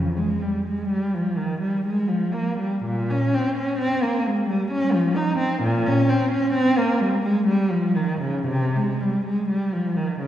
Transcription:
Already playing: F2
0.17 G#3
0.42 G3
0.67 G#3
0.89 G3
1.14 F3
1.38 D#3
1.61 G3
1.86 G#3
2.08 F3
2.33 A#3
2.59 G3
2.84 A#2
3.11 C#4
3.34 C4
3.57 C#4
3.79 C4
4.03 A#3
4.26 G#3
4.49 G3
4.71 C#4
4.94 F3
5.16 D#4
5.38 C4
5.63 A#2
5.86 C#4
6.09 C4
6.32 C#4
6.54 C4
6.77 A#3
7.01 G3
7.23 G#3
7.47 G3
7.70 F3
7.96 D#3
8.21 C#3
8.48 C3
8.76 G#3
9.00 G3
9.26 G#3
9.49 G3
9.73 F3
9.97 D#3
10.20 C#3

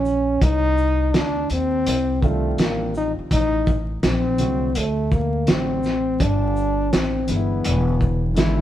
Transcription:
Already playing: A#1 C#4
0.05 shaker
0.42 C2 D#4, kick, closed hi-hat
0.78 shaker
1.14 D2 D4, snare, closed hi-hat
1.50 D#2 C4, closed hi-hat, shaker
1.86 C2, closed hi-hat
2.21 D#3 G3 A3 C4 D4 F4, kick, shaker
2.58 A1 A#3, snare, closed hi-hat
2.94 D#4, shaker
3.19 muted upright bass stroke
3.31 A1 D#4, kick, closed hi-hat
3.67 kick, shaker
4.03 A#1 C4, snare, closed hi-hat
4.38 C2 D3 F#3 A3 C4 F#4, closed hi-hat, shaker
4.75 D2 A3, closed hi-hat
5.12 A#3, kick, shaker
5.47 A1 D3 F#3 A3 C4 F#4, snare, closed hi-hat
5.83 snare, shaker
6.20 G1 D4, kick, closed hi-hat
6.56 shaker
6.93 A1 C4, snare, closed hi-hat
7.27 G1 D3 E3 G#3 B3 D#4, closed hi-hat, shaker
7.32 B3
7.36 E4
7.65 E1, closed hi-hat
8.01 kick, shaker
8.35 G#1 D3 E3 G#3 B3 E4, snare, closed hi-hat

